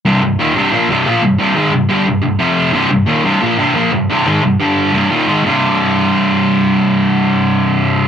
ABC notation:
X:1
M:4/4
L:1/8
Q:1/4=178
K:Cm
V:1 name="Distorted electric guitar" clef=bass
[C,,G,,C,] [C,,G,,] [E,,B,,E,] [C,,G,,C,] [B,,F,B,] [C,,G,,C,] [B,,F,B,] [C,,G,,] | [C,,G,,C,] [A,,E,A,] [C,,G,,] [G,,D,G,] [C,,G,,] [C,,G,,] [F,,C,F,]2 | [C,,G,,C,] [C,,G,,] [E,,B,,E,] [C,,G,,C,] [B,,F,B,] [C,,G,,C,] [B,,F,B,] [C,,G,,] | [C,,G,,C,] [A,,E,A,] [C,,G,,] [G,,D,G,]2 [C,,G,,C,] [E,,B,,E,] [A,,E,A,] |
[C,,G,,C,]8- | [C,,G,,C,]8 |]